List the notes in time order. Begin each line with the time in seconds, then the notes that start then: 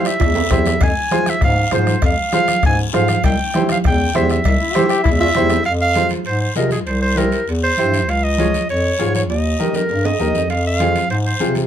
Already playing: E4 G4 C5
0.05 E5, bombo rim, high timbale, short guiro
0.20 E2, bombo low, bombo rim, cowbell, low conga, high timbale, long guiro
0.35 high conga, low timbale
0.50 E2 E4 G4 C5 E5, bombo low, bombo rim, high conga, low conga, low timbale, short guiro
0.66 bombo rim, high conga, low timbale, short guiro
0.81 F2 G#5, bombo low, bombo rim, cowbell, high conga, low conga, long guiro
1.11 F4 G#4 C5, bombo rim, high conga, short guiro
1.26 E5, bombo rim, high conga, short guiro
1.41 G#2 F5, bombo low, bombo rim, cowbell, low conga, long guiro
1.58 high conga
1.71 G#2 F4 G#4 C5, bombo rim, high conga, low conga, short guiro
1.87 bombo rim, high conga, short guiro
2.02 F2 F5, bombo low, bombo rim, cowbell, high conga, low conga, long guiro
2.32 F4 G#4 C5 F5, bombo rim, high conga, short guiro
2.48 bombo rim, high conga, short guiro
2.63 G#2 G#5, bombo low, bombo rim, cowbell, low conga, long guiro
2.79 high conga
2.93 G#2 F4 G#4 C5 F5, bombo rim, high conga, low timbale, short guiro
3.08 bombo rim, high conga, short guiro
3.23 C2 G5, bombo low, bombo rim, cowbell, high conga, low conga, long guiro
3.54 E4 G4 C5, bombo rim, high conga, short guiro
3.69 F5, bombo rim, high conga, short guiro
3.84 E2 G5, bombo low, bombo rim, cowbell, low conga, long guiro
4.00 high conga
4.14 E2 E4 G4 C5 E5, bombo rim, high conga, low conga, low timbale, short guiro
4.30 E5, bombo rim, high conga, short guiro
4.44 C2, bombo low, bombo rim, cowbell, high conga, low conga, long guiro
4.61 E4
4.74 E4 G4 C5, bombo rim, high conga, short guiro
4.89 G4, bombo rim, short guiro
5.04 E2 E4, bombo low, bombo rim, cowbell, low conga, long guiro
5.19 F4 E5, high conga, high timbale
5.35 E2 E4 G4 C5, bombo rim, high conga, low conga, high timbale, short guiro
5.50 bombo rim, high conga, low timbale, short guiro
5.64 F2 F5, high conga, high timbale, long guiro
5.81 F5
5.94 F4 G#4 C5, high conga, high timbale, short guiro
6.09 high conga, high timbale, short guiro
6.25 G#2 C5, high timbale, long guiro
6.41 C5, high conga
6.55 C3 F4 G#4 A#4 D#5, high conga, high timbale, low timbale, short guiro
6.70 G#4, high conga, high timbale, short guiro
6.86 C2 C5, high conga, high timbale, long guiro
7.02 C5
7.16 E4 G4 A#4 C5, high conga, high timbale, short guiro
7.32 high timbale, short guiro
7.48 E2, high timbale, long guiro
7.62 C5, high conga
7.77 G2 E4 G4 C5, high conga, high timbale, short guiro
7.92 high conga, high timbale, short guiro
8.08 C#2 F5, high conga, high timbale, long guiro
8.24 D#5
8.38 F4 G#4 C#5, high conga, high timbale, short guiro
8.54 high conga, high timbale, short guiro
8.69 F2 C#5, high timbale, long guiro
8.84 high conga
8.99 G#2 F4 G#4 C#5, high conga, high timbale, low timbale, short guiro
9.15 C#5, high conga, high timbale, short guiro
9.30 D#2 D#5, high conga, high timbale, long guiro
9.59 D#4 G4 A#4, high conga, short guiro
9.74 A#4, high conga, low timbale, short guiro
9.89 G2, low timbale, long guiro
10.05 D#5, high conga, low timbale
10.19 D#2 D#4 G4 A#4, high conga, short guiro
10.35 F2, high conga, low timbale, short guiro
10.49 F2 F5, high conga, high timbale, long guiro
10.67 F5
10.80 C4 F4 G#4, high conga, high timbale, short guiro
10.95 high conga, high timbale, short guiro
11.10 G#2 C5, high timbale, long guiro
11.26 C5, high conga
11.40 C3 C4 F4 G#4, high conga, high timbale, low timbale, short guiro
11.55 high conga, high timbale, short guiro